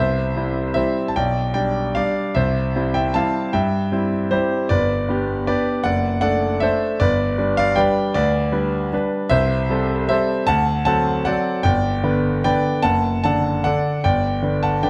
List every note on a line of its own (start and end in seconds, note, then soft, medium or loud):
0.00 0.35 C2 medium
0.00 0.73 C5 medium
0.00 0.73 E5 loud
0.36 0.73 G3 medium
0.36 0.73 C4 medium
0.36 0.73 E4 medium
0.74 1.12 G3 medium
0.74 1.12 C4 medium
0.74 1.12 E4 medium
0.74 1.07 C5 medium
0.74 1.09 E5 medium
1.08 1.16 A5 medium
1.16 1.55 B1 medium
1.16 1.53 D5 medium
1.16 1.52 G5 loud
1.54 1.92 G3 medium
1.54 1.93 D4 medium
1.54 1.93 D5 medium
1.54 1.96 G5 medium
1.95 2.33 G3 medium
1.95 2.33 D4 medium
1.95 2.34 D5 medium
1.95 2.36 F5 medium
2.35 2.74 C2 medium
2.35 2.92 C5 medium
2.35 2.94 E5 medium
2.76 3.12 G3 medium
2.76 3.12 C4 medium
2.76 3.13 E4 medium
2.94 3.15 E5 medium
2.94 3.15 G5 medium
3.14 3.50 G3 medium
3.14 3.51 C4 medium
3.14 3.51 E4 medium
3.14 3.52 F5 medium
3.14 3.54 A5 loud
3.53 3.91 G2 medium
3.53 4.08 E5 medium
3.53 4.12 G5 medium
3.92 4.28 G3 medium
3.92 4.28 C4 medium
3.92 4.28 E4 medium
4.31 4.66 G3 medium
4.31 4.67 C4 medium
4.31 4.67 E4 medium
4.31 4.67 G4 medium
4.31 4.70 C5 medium
4.69 5.07 G1 medium
4.69 5.43 B4 medium
4.69 5.46 D5 loud
5.09 5.44 B3 medium
5.09 5.44 D4 medium
5.09 5.45 G4 medium
5.47 5.82 B3 medium
5.47 5.82 D4 medium
5.47 5.83 G4 medium
5.47 5.83 B4 medium
5.47 5.84 D5 medium
5.84 6.22 F#1 medium
5.84 6.20 D5 medium
5.84 6.20 F#5 loud
6.21 6.58 A3 medium
6.21 6.58 D4 medium
6.21 6.58 A4 medium
6.21 6.59 D5 medium
6.21 6.61 F#5 loud
6.60 6.97 A3 medium
6.60 6.97 D4 medium
6.60 6.97 A4 medium
6.60 6.98 C5 medium
6.60 7.00 E5 loud
7.00 7.37 G1 medium
7.00 7.37 B4 medium
7.00 7.57 D5 loud
7.38 7.73 G3 medium
7.38 7.74 D4 medium
7.38 7.73 B4 medium
7.57 7.75 D5 medium
7.57 7.77 F5 loud
7.76 8.11 G3 medium
7.76 8.12 D4 medium
7.76 8.12 B4 medium
7.76 8.13 D5 medium
7.76 8.15 G5 loud
8.14 8.52 D2 medium
8.14 8.51 B4 medium
8.14 8.72 D5 loud
8.52 8.88 G3 medium
8.52 8.89 D4 medium
8.52 8.88 B4 medium
8.93 9.27 G3 medium
8.93 9.28 D4 medium
8.93 9.28 B4 medium
9.29 9.68 C2 medium
9.29 10.05 C5 medium
9.29 10.07 E5 loud
9.70 10.05 G3 medium
9.70 10.06 C4 medium
9.70 10.06 A4 medium
10.09 10.45 G3 medium
10.09 10.45 C4 medium
10.09 10.45 A4 medium
10.09 10.46 C5 medium
10.09 10.48 E5 loud
10.47 10.85 D2 medium
10.47 10.84 F#5 medium
10.47 10.84 A5 loud
10.85 11.22 F#3 medium
10.85 11.22 C4 medium
10.85 11.22 A4 medium
10.85 11.23 F#5 medium
10.85 11.25 A5 loud
11.25 11.61 F#3 medium
11.25 11.62 C4 medium
11.25 11.62 A4 medium
11.25 11.62 D5 medium
11.25 11.65 F#5 loud
11.63 12.03 G1 medium
11.63 12.41 D5 medium
11.63 12.43 G5 loud
12.04 12.40 D3 medium
12.04 12.40 B3 medium
12.04 12.41 B4 medium
12.44 12.80 D3 medium
12.44 12.81 B3 medium
12.44 12.81 B4 medium
12.44 12.81 D5 medium
12.44 12.84 G5 loud
12.82 13.22 F#1 medium
12.82 13.20 F#5 medium
12.82 13.22 A5 loud
13.24 13.61 D3 medium
13.24 13.61 D4 medium
13.24 13.61 A4 medium
13.24 13.62 F#5 medium
13.24 13.64 A5 loud
13.64 14.00 D3 medium
13.64 14.00 D4 medium
13.64 14.01 A4 medium
13.64 14.01 D5 medium
13.64 14.03 F#5 loud
14.04 14.42 G1 medium
14.04 14.60 D5 medium
14.04 14.64 G5 medium
14.42 14.80 D3 medium
14.42 14.80 D4 medium
14.42 14.80 B4 medium
14.63 14.83 F#5 medium
14.63 14.84 A5 medium
14.83 14.90 D3 medium
14.83 14.90 D4 medium
14.83 14.90 B4 medium
14.83 14.90 D5 medium
14.83 14.90 G5 medium